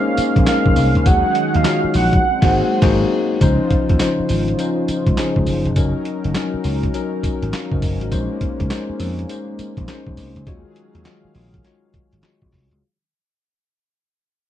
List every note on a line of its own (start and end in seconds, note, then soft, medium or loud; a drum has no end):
0.00 1.03 G#3 medium
0.00 0.47 A#3 medium
0.00 1.03 A#3 medium
0.00 0.47 C#4 medium
0.00 2.19 C#4 medium
0.00 0.48 D#4 medium
0.00 0.48 G#4 medium
0.00 0.48 A#4 medium
0.00 1.08 C5 loud
0.00 0.47 F5 loud
0.17 muted slap bass stroke medium
0.17 closed hi-hat medium
0.17 tambourine medium
0.36 0.45 A#1 medium
0.36 kick loud
0.36 closed hi-hat medium
0.47 0.86 A#3 medium
0.47 0.87 C#4 medium
0.47 0.87 D#4 medium
0.47 0.87 G#4 medium
0.47 0.87 A#4 loud
0.47 1.08 F5 medium
0.47 snare loud
0.47 clap medium
0.47 closed hi-hat medium
0.47 tambourine medium
0.66 0.74 A#1 medium
0.66 kick medium
0.76 0.92 C2 loud
0.76 open hi-hat medium
0.76 tambourine medium
0.95 1.04 C#2 medium
0.95 closed hi-hat medium
1.05 1.21 D#2 loud
1.05 2.22 D#3 medium
1.05 3.38 F#3 medium
1.05 1.46 G#3 medium
1.05 2.22 D#4 medium
1.05 1.46 D#4 medium
1.05 1.46 F#4 medium
1.05 2.22 G#4 medium
1.05 1.46 G#4 medium
1.05 1.46 C#5 loud
1.05 1.58 F#5 loud
1.05 kick loud
1.05 closed hi-hat medium
1.05 tambourine medium
1.35 closed hi-hat medium
1.54 1.63 D#2 medium
1.54 1.95 F5 loud
1.54 closed hi-hat soft
1.64 2.05 G#3 medium
1.64 2.05 D#4 medium
1.64 2.05 F4 medium
1.64 2.05 F#4 medium
1.64 2.05 C#5 medium
1.64 snare loud
1.64 clap medium
1.64 closed hi-hat medium
1.64 tambourine loud
1.84 muted slap bass stroke soft
1.94 2.18 A#1 medium
1.94 2.79 F#5 medium
1.94 open hi-hat medium
1.94 tambourine medium
2.13 kick medium
2.13 closed hi-hat medium
2.23 3.40 G#3 medium
2.23 3.40 C4 medium
2.42 2.61 G#1 loud
2.42 2.61 A#3 loud
2.42 2.61 D#4 loud
2.42 2.62 F#4 loud
2.42 2.62 G#4 loud
2.42 2.62 C5 loud
2.42 kick loud
2.42 snare loud
2.42 crash medium
2.82 3.04 G#1 loud
2.82 3.04 A#3 loud
2.82 3.04 D#4 loud
2.82 3.04 F#4 loud
2.82 3.04 G#4 loud
2.82 3.04 C5 loud
2.82 kick loud
2.82 snare loud
2.82 crash medium
3.41 3.56 C#2 loud
3.41 5.74 C#3 medium
3.41 3.81 F3 loud
3.41 3.81 C#4 loud
3.41 8.08 D#4 medium
3.41 3.81 D#4 loud
3.41 5.74 F4 medium
3.41 5.74 C5 medium
3.41 3.81 C5 loud
3.41 kick loud
3.41 closed hi-hat medium
3.41 tambourine medium
3.71 kick loud
3.71 closed hi-hat medium
3.89 3.98 D#2 medium
3.89 kick medium
3.89 closed hi-hat medium
4.00 4.40 F3 medium
4.00 4.40 C#4 medium
4.00 4.40 D#4 medium
4.00 4.40 C5 medium
4.00 snare loud
4.00 clap medium
4.00 closed hi-hat medium
4.00 tambourine loud
4.20 muted slap bass stroke medium
4.29 4.53 G#1 medium
4.29 open hi-hat medium
4.29 tambourine medium
4.48 closed hi-hat medium
4.59 4.99 F3 medium
4.59 4.99 C#4 medium
4.59 4.99 D#4 medium
4.59 4.99 C5 loud
4.59 closed hi-hat medium
4.59 tambourine medium
4.88 muted slap bass stroke soft
4.88 closed hi-hat medium
4.88 tambourine medium
5.07 5.15 C#2 medium
5.07 kick loud
5.07 closed hi-hat medium
5.17 5.57 F3 medium
5.17 5.57 C#4 medium
5.17 5.58 D#4 medium
5.17 5.58 G#4 loud
5.17 snare loud
5.17 clap medium
5.17 closed hi-hat medium
5.17 tambourine medium
5.36 5.45 C#2 medium
5.36 kick loud
5.46 5.62 F#1 loud
5.46 open hi-hat medium
5.46 tambourine medium
5.65 5.74 F1 loud
5.65 closed hi-hat medium
5.76 5.92 F#1 loud
5.76 8.09 F#3 medium
5.76 6.16 F#3 loud
5.76 12.78 C#4 medium
5.76 6.16 C#4 medium
5.76 6.16 D#4 loud
5.76 8.09 A#4 medium
5.76 6.17 A#4 loud
5.76 kick loud
5.76 closed hi-hat medium
5.76 tambourine medium
6.05 closed hi-hat medium
6.24 6.33 F#1 loud
6.24 closed hi-hat soft
6.35 6.75 F#3 loud
6.35 6.75 C#4 medium
6.35 6.75 D#4 medium
6.35 6.75 A#4 loud
6.35 snare loud
6.35 clap medium
6.35 closed hi-hat medium
6.35 tambourine loud
6.54 muted slap bass stroke medium
6.64 6.88 C#2 medium
6.64 open hi-hat medium
6.64 tambourine medium
6.83 kick medium
6.83 closed hi-hat medium
6.94 7.34 F#3 loud
6.94 7.34 C#4 medium
6.94 7.34 D#4 medium
6.94 7.34 A#4 loud
6.94 closed hi-hat medium
6.94 tambourine medium
7.23 muted slap bass stroke medium
7.23 kick loud
7.23 closed hi-hat medium
7.23 tambourine medium
7.42 7.51 G#1 medium
7.42 closed hi-hat medium
7.53 7.72 C#5 medium
7.53 7.71 F5 medium
7.53 snare loud
7.53 clap medium
7.53 closed hi-hat medium
7.53 tambourine medium
7.72 7.80 F#1 medium
7.72 8.00 C5 medium
7.72 8.00 D#5 medium
7.72 kick medium
7.82 7.97 F#1 medium
7.82 kick loud
7.82 open hi-hat medium
7.82 tambourine medium
8.01 8.10 G#1 medium
8.01 8.30 F#4 medium
8.01 8.29 A#4 medium
8.01 closed hi-hat medium
8.11 8.27 A#1 loud
8.11 10.44 G#3 medium
8.11 8.51 G#3 loud
8.11 10.44 A#3 medium
8.11 8.51 C#4 medium
8.11 8.52 D#4 medium
8.11 8.52 C5 loud
8.11 kick loud
8.11 closed hi-hat medium
8.11 tambourine medium
8.41 kick medium
8.41 closed hi-hat medium
8.60 8.69 C#2 loud
8.60 kick medium
8.60 closed hi-hat medium
8.70 9.10 G#3 medium
8.70 9.11 C#4 medium
8.70 9.11 D#4 medium
8.70 9.11 C5 loud
8.70 snare loud
8.70 clap medium
8.70 closed hi-hat medium
8.70 tambourine loud
8.90 muted slap bass stroke soft
9.00 9.24 F2 medium
9.00 open hi-hat medium
9.00 tambourine medium
9.19 closed hi-hat medium
9.29 9.69 G#3 medium
9.29 9.69 C#4 medium
9.29 9.70 D#4 medium
9.29 9.70 C5 medium
9.29 closed hi-hat medium
9.29 tambourine medium
9.59 muted slap bass stroke soft
9.59 closed hi-hat medium
9.59 tambourine medium
9.77 9.86 A#1 medium
9.77 kick loud
9.77 closed hi-hat medium
9.88 10.28 G#3 medium
9.88 10.28 C#4 medium
9.88 10.28 D#4 medium
9.88 10.29 C5 loud
9.88 snare loud
9.88 clap medium
9.88 closed hi-hat medium
9.88 tambourine medium
10.07 10.15 A#1 medium
10.07 kick medium
10.17 10.33 C2 medium
10.17 open hi-hat medium
10.17 tambourine medium
10.36 10.45 C#2 medium
10.36 closed hi-hat medium
10.47 10.62 D#2 loud
10.47 12.80 D#3 medium
10.47 12.80 F#3 medium
10.47 10.87 G#3 loud
10.47 10.87 F4 loud
10.47 10.87 F#4 medium
10.47 12.80 G#4 medium
10.47 10.87 C#5 loud
10.47 12.80 F5 medium
10.47 kick loud
10.47 closed hi-hat medium
10.76 closed hi-hat medium
10.95 11.03 D#2 medium
10.95 closed hi-hat soft
11.05 11.46 G#3 medium
11.05 11.46 F4 medium
11.05 11.46 F#4 medium
11.05 11.46 C#5 loud
11.05 snare loud
11.05 clap loud
11.05 closed hi-hat medium
11.25 muted slap bass stroke soft
11.35 11.59 A#1 medium
11.35 open hi-hat medium
11.54 kick medium
11.54 closed hi-hat medium
11.64 12.04 G#3 medium
11.64 12.04 F4 medium
11.64 12.05 F#4 medium
11.64 12.05 C#5 loud
11.64 snare medium
11.64 closed hi-hat medium
11.94 muted slap bass stroke soft
11.94 kick loud
11.94 closed hi-hat medium
12.13 12.21 G#1 medium
12.13 closed hi-hat medium
12.23 12.63 G#3 medium
12.23 12.63 F4 medium
12.23 12.64 F#4 medium
12.23 12.64 C#5 loud
12.23 snare loud
12.23 clap medium
12.23 closed hi-hat medium
12.42 12.51 A#1 medium
12.42 kick loud
12.53 12.68 C2 medium
12.53 kick loud
12.53 snare medium
12.53 open hi-hat medium
12.71 12.80 C#2 medium
12.71 closed hi-hat medium